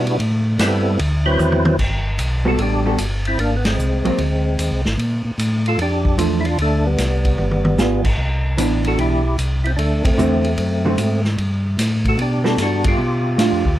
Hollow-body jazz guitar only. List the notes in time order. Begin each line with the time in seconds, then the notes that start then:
2.45 G3 B3 F#4 A4
2.86 G3 B3 F#4 A4
4.05 F#3 A#3 C4
6.18 F3 A3 D4
7.78 G3 B3 F4 G#4
8.57 E3 B3 D4
10.18 D3 A3 C4 F#4
10.85 D3 A3 C4 F#4
12.44 G3 B3 F#4 A4
13.38 A3 D4 F4